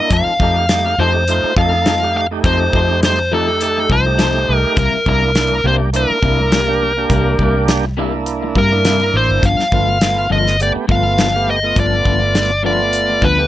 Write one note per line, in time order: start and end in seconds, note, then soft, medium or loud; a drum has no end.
0.00 0.11 A#3 medium
0.00 0.11 D4 medium
0.00 0.12 E4 medium
0.00 0.12 D#5 medium
0.10 0.25 F2 medium
0.10 0.30 F3 medium
0.10 0.30 C4 medium
0.10 0.30 D#4 medium
0.10 0.30 A4 medium
0.10 1.02 F5 medium
0.10 kick loud
0.10 closed hi-hat medium
0.26 muted fingered electric bass stroke soft
0.39 0.94 F2 medium
0.39 0.56 F3 medium
0.39 0.66 A3 medium
0.39 0.56 C4 medium
0.39 0.66 D#4 medium
0.39 0.56 D#4 medium
0.39 0.66 G4 medium
0.39 0.55 A4 medium
0.39 kick medium
0.56 muted clean electric guitar stroke soft
0.69 0.95 A3 medium
0.69 0.96 D#4 medium
0.69 0.96 G4 medium
0.69 muted clean electric guitar stroke soft
0.69 snare loud
0.69 closed hi-hat medium
0.86 muted clean electric guitar stroke soft
0.98 1.39 F2 medium
0.98 1.14 F3 medium
0.98 1.24 A3 medium
0.98 1.15 C4 medium
0.98 1.24 D#4 medium
0.98 1.14 D#4 medium
0.98 1.25 G4 medium
0.98 1.14 A4 medium
0.98 1.53 C5 medium
1.15 muted clean electric guitar stroke soft
1.28 1.53 A3 medium
1.28 1.53 D#4 medium
1.28 1.54 F4 medium
1.28 closed hi-hat medium
1.44 muted fingered electric bass stroke soft
1.44 muted clean electric guitar stroke soft
1.57 2.40 F2 medium
1.57 1.72 F3 medium
1.57 1.95 A3 medium
1.57 1.73 C4 medium
1.57 1.95 D#4 medium
1.57 1.73 D#4 medium
1.57 1.96 A4 medium
1.57 1.72 A4 medium
1.57 2.16 F5 medium
1.57 kick medium
1.73 muted clean electric guitar stroke soft
1.86 2.02 F3 medium
1.86 2.01 C4 medium
1.86 2.01 D#4 medium
1.86 2.00 A4 medium
1.86 snare loud
1.86 closed hi-hat soft
2.02 2.27 A3 medium
2.02 2.27 D#4 medium
2.02 2.27 G4 medium
2.02 muted clean electric guitar stroke soft
2.15 2.25 F5 medium
2.15 muted clean electric guitar stroke soft
2.31 3.19 A3 medium
2.31 3.19 D#4 medium
2.31 3.20 G4 medium
2.44 2.71 F2 medium
2.44 2.63 F3 medium
2.44 2.63 C4 medium
2.44 2.63 D#4 medium
2.44 2.63 A4 medium
2.44 2.99 C5 medium
2.44 kick loud
2.44 closed hi-hat medium
2.73 3.86 F2 medium
2.73 2.89 F3 medium
2.73 2.89 C4 soft
2.73 2.89 D#4 medium
2.73 2.88 A4 medium
2.73 kick medium
2.90 muted clean electric guitar stroke soft
3.03 3.34 C5 medium
3.03 muted clean electric guitar stroke soft
3.03 snare loud
3.03 closed hi-hat medium
3.19 muted clean electric guitar stroke soft
3.31 3.47 F3 medium
3.31 3.95 A3 medium
3.31 3.48 C4 medium
3.31 3.95 D#4 medium
3.31 3.47 D#4 medium
3.31 3.95 G4 medium
3.31 3.47 A4 medium
3.31 3.60 A4 medium
3.48 muted clean electric guitar stroke soft
3.61 3.92 A4 medium
3.61 closed hi-hat medium
3.77 muted clean electric guitar stroke soft
3.90 4.44 C2 medium
3.90 4.06 F3 medium
3.90 4.05 C4 medium
3.90 4.05 D#4 medium
3.90 4.04 A4 medium
3.90 4.56 C5 medium
3.90 kick medium
4.05 4.77 A3 medium
4.05 4.77 D#4 medium
4.05 4.78 G4 medium
4.05 muted clean electric guitar stroke soft
4.18 4.34 F3 medium
4.18 4.34 C4 medium
4.18 4.34 D#4 medium
4.18 4.33 A4 medium
4.18 snare loud
4.18 closed hi-hat medium
4.34 muted clean electric guitar stroke soft
4.48 4.63 C2 medium
4.48 muted clean electric guitar stroke soft
4.56 4.79 A#4 medium
4.64 muted fingered electric bass stroke soft
4.76 4.91 C2 medium
4.76 4.95 C3 medium
4.76 4.96 G3 medium
4.76 4.96 A#3 medium
4.76 4.96 E4 medium
4.76 5.08 A#4 medium
4.76 kick loud
4.76 closed hi-hat medium
4.93 muted fingered electric bass stroke soft
5.06 5.61 C2 medium
5.06 5.22 C3 medium
5.06 5.22 G3 medium
5.06 5.32 A#3 medium
5.06 5.21 A#3 medium
5.06 5.32 D4 medium
5.06 5.32 E4 medium
5.06 5.20 E4 medium
5.06 5.67 A#4 medium
5.06 kick medium
5.22 muted clean electric guitar stroke soft
5.35 5.61 A#3 medium
5.35 5.61 D4 medium
5.35 5.61 E4 medium
5.35 muted clean electric guitar stroke soft
5.35 snare loud
5.35 closed hi-hat medium
5.51 muted clean electric guitar stroke soft
5.64 6.05 C2 medium
5.64 5.80 C3 medium
5.64 5.81 G3 medium
5.64 5.90 A#3 medium
5.64 5.80 A#3 medium
5.64 5.90 D4 medium
5.64 5.79 E4 medium
5.64 5.90 G4 medium
5.64 5.75 C5 medium
5.81 muted clean electric guitar stroke soft
5.93 6.19 A#3 medium
5.93 6.19 D4 medium
5.93 6.20 E4 medium
5.93 7.66 A#4 medium
5.93 closed hi-hat medium
6.10 muted clean electric guitar stroke soft
6.22 7.06 C2 medium
6.22 6.38 C3 medium
6.22 6.39 G3 medium
6.22 6.61 A#3 medium
6.22 6.39 A#3 medium
6.22 6.61 D4 medium
6.22 6.61 E4 medium
6.22 6.38 E4 medium
6.22 kick medium
6.39 muted clean electric guitar stroke soft
6.52 6.68 C3 medium
6.52 6.68 G3 medium
6.52 6.68 A#3 medium
6.52 6.67 E4 medium
6.52 snare loud
6.52 closed hi-hat medium
6.68 6.92 A#3 medium
6.68 6.93 D4 medium
6.68 6.93 G4 medium
6.68 muted clean electric guitar stroke soft
6.82 muted clean electric guitar stroke soft
6.97 7.85 A#3 medium
6.97 7.85 D4 medium
6.97 7.85 G4 loud
7.10 7.36 C2 medium
7.10 7.29 C3 medium
7.10 7.29 G3 medium
7.10 7.29 A#3 medium
7.10 7.30 E4 medium
7.10 kick loud
7.10 closed hi-hat medium
7.39 8.52 C2 medium
7.39 7.55 C3 medium
7.39 7.55 G3 medium
7.39 7.54 A#3 medium
7.39 7.53 E4 medium
7.39 kick medium
7.55 muted clean electric guitar stroke soft
7.68 muted clean electric guitar stroke soft
7.68 snare loud
7.68 closed hi-hat medium
7.84 muted clean electric guitar stroke soft
7.97 8.13 C3 medium
7.97 8.14 G3 medium
7.97 8.61 A#3 medium
7.97 8.13 A#3 medium
7.97 8.61 D4 medium
7.97 8.12 E4 loud
7.97 8.61 E4 medium
8.13 muted clean electric guitar stroke soft
8.26 closed hi-hat medium
8.43 muted clean electric guitar stroke soft
8.55 9.10 G2 medium
8.55 8.72 C3 soft
8.55 8.71 G3 soft
8.55 8.71 A#3 medium
8.55 8.70 E4 medium
8.55 9.17 A#4 medium
8.55 kick medium
8.71 9.43 A#3 medium
8.71 9.43 D4 medium
8.71 9.44 E4 medium
8.71 muted clean electric guitar stroke soft
8.85 9.01 C3 medium
8.85 9.00 G3 medium
8.85 9.00 A#3 medium
8.85 8.99 E4 medium
8.85 snare loud
8.85 closed hi-hat medium
9.00 muted clean electric guitar stroke soft
9.13 9.28 A1 medium
9.13 9.46 C5 medium
9.13 muted clean electric guitar stroke soft
9.29 9.42 G1 medium
9.42 9.57 G1 medium
9.42 9.61 G2 medium
9.42 9.61 F3 medium
9.42 9.62 B3 medium
9.42 9.62 D4 medium
9.42 10.32 F5 medium
9.42 kick loud
9.42 closed hi-hat medium
9.59 muted fingered electric bass stroke soft
9.59 snare soft
9.71 10.27 G1 medium
9.71 9.88 G2 medium
9.71 9.88 F3 medium
9.71 9.98 A3 medium
9.71 9.87 B3 medium
9.71 9.98 B3 medium
9.71 9.86 D4 medium
9.71 9.99 F4 medium
9.71 kick medium
9.88 muted clean electric guitar stroke soft
10.01 10.27 A3 medium
10.01 10.27 B3 medium
10.01 10.28 F4 medium
10.01 muted clean electric guitar stroke soft
10.01 snare loud
10.01 closed hi-hat medium
10.16 muted clean electric guitar stroke soft
10.30 10.72 G1 medium
10.30 10.46 G2 medium
10.30 10.46 F3 medium
10.30 10.56 A3 medium
10.30 10.46 B3 medium
10.30 10.57 B3 medium
10.30 10.45 D4 medium
10.30 10.57 F4 medium
10.30 10.59 D#5 medium
10.46 muted clean electric guitar stroke soft
10.46 snare soft
10.60 10.86 A3 medium
10.60 10.86 B3 medium
10.60 10.86 G4 medium
10.60 10.70 D5 medium
10.60 closed hi-hat medium
10.75 muted clean electric guitar stroke soft
10.75 muted fingered electric bass stroke soft
10.87 11.72 G1 medium
10.87 11.04 G2 medium
10.87 11.04 F3 medium
10.87 11.28 A3 medium
10.87 11.04 B3 medium
10.87 11.28 B3 medium
10.87 11.03 D4 medium
10.87 11.28 F4 medium
10.87 11.50 F5 medium
10.87 kick medium
11.04 muted clean electric guitar stroke soft
11.18 11.34 G2 medium
11.18 11.34 F3 medium
11.18 11.33 B3 medium
11.18 11.33 D4 medium
11.18 snare loud
11.18 closed hi-hat medium
11.34 11.59 A3 medium
11.34 11.59 B3 medium
11.34 11.60 G4 medium
11.34 muted clean electric guitar stroke soft
11.47 11.79 D#5 medium
11.47 muted clean electric guitar stroke soft
11.63 12.51 A3 medium
11.63 12.51 B3 medium
11.63 12.52 F4 medium
11.75 12.03 G1 medium
11.75 11.94 G2 medium
11.75 11.95 F3 medium
11.75 11.95 B3 medium
11.75 11.95 D4 medium
11.75 kick loud
11.75 closed hi-hat medium
11.80 12.62 D5 medium
12.05 13.18 G1 medium
12.05 12.21 G2 medium
12.05 12.21 F3 medium
12.05 12.21 B3 medium
12.05 12.20 D4 medium
12.05 kick medium
12.21 muted clean electric guitar stroke soft
12.34 muted clean electric guitar stroke soft
12.34 snare loud
12.34 closed hi-hat medium
12.50 muted clean electric guitar stroke soft
12.63 12.79 G2 medium
12.63 12.80 F3 medium
12.63 13.27 A3 medium
12.63 12.79 B3 medium
12.63 13.28 B3 medium
12.63 12.79 D4 medium
12.63 13.28 F4 medium
12.63 13.25 D5 medium
12.80 muted clean electric guitar stroke soft
12.93 closed hi-hat medium
13.09 muted clean electric guitar stroke soft
13.22 13.47 D2 medium
13.22 13.38 G2 medium
13.22 13.38 F3 medium
13.22 13.38 B3 medium
13.22 13.37 D4 medium
13.22 13.47 B4 medium
13.22 kick medium
13.38 13.47 A3 medium
13.38 13.47 B3 medium
13.38 13.47 G4 medium
13.38 muted clean electric guitar stroke soft